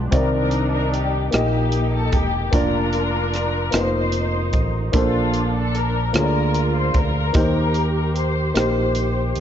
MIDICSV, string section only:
0, 0, Header, 1, 2, 480
1, 0, Start_track
1, 0, Key_signature, -2, "major"
1, 0, Tempo, 803213
1, 73, Time_signature, 6, 3, 24, 8
1, 5619, End_track
2, 0, Start_track
2, 0, Title_t, "String section"
2, 0, Program_c, 0, 48
2, 71, Note_on_c, 0, 70, 70
2, 78, Note_on_c, 0, 63, 54
2, 79, Note_on_c, 0, 62, 57
2, 408, Note_off_c, 0, 70, 0
2, 436, Note_on_c, 0, 70, 68
2, 546, Note_off_c, 0, 70, 0
2, 553, Note_on_c, 0, 67, 64
2, 771, Note_off_c, 0, 63, 0
2, 772, Note_off_c, 0, 62, 0
2, 776, Note_off_c, 0, 67, 0
2, 801, Note_on_c, 0, 67, 64
2, 802, Note_on_c, 0, 58, 53
2, 806, Note_on_c, 0, 63, 50
2, 1133, Note_off_c, 0, 67, 0
2, 1163, Note_on_c, 0, 69, 70
2, 1273, Note_on_c, 0, 67, 79
2, 1278, Note_off_c, 0, 69, 0
2, 1493, Note_off_c, 0, 58, 0
2, 1495, Note_off_c, 0, 63, 0
2, 1513, Note_off_c, 0, 67, 0
2, 1515, Note_on_c, 0, 70, 73
2, 1519, Note_on_c, 0, 65, 54
2, 1520, Note_on_c, 0, 62, 59
2, 2212, Note_off_c, 0, 65, 0
2, 2213, Note_off_c, 0, 62, 0
2, 2234, Note_off_c, 0, 70, 0
2, 2244, Note_on_c, 0, 63, 52
2, 2245, Note_on_c, 0, 72, 69
2, 2779, Note_off_c, 0, 72, 0
2, 2935, Note_off_c, 0, 63, 0
2, 2959, Note_on_c, 0, 69, 50
2, 2964, Note_on_c, 0, 62, 52
2, 2964, Note_on_c, 0, 65, 67
2, 3295, Note_off_c, 0, 65, 0
2, 3319, Note_off_c, 0, 69, 0
2, 3326, Note_on_c, 0, 69, 71
2, 3432, Note_off_c, 0, 69, 0
2, 3444, Note_on_c, 0, 70, 74
2, 3655, Note_off_c, 0, 62, 0
2, 3679, Note_off_c, 0, 70, 0
2, 3687, Note_on_c, 0, 65, 53
2, 3695, Note_on_c, 0, 70, 76
2, 4021, Note_off_c, 0, 70, 0
2, 4044, Note_on_c, 0, 72, 71
2, 4159, Note_off_c, 0, 72, 0
2, 4159, Note_on_c, 0, 70, 78
2, 4377, Note_off_c, 0, 65, 0
2, 4396, Note_off_c, 0, 70, 0
2, 4407, Note_on_c, 0, 67, 56
2, 4413, Note_on_c, 0, 70, 73
2, 4860, Note_off_c, 0, 70, 0
2, 4887, Note_on_c, 0, 72, 73
2, 5097, Note_off_c, 0, 67, 0
2, 5121, Note_off_c, 0, 72, 0
2, 5128, Note_on_c, 0, 67, 54
2, 5129, Note_on_c, 0, 72, 72
2, 5619, Note_off_c, 0, 67, 0
2, 5619, Note_off_c, 0, 72, 0
2, 5619, End_track
0, 0, End_of_file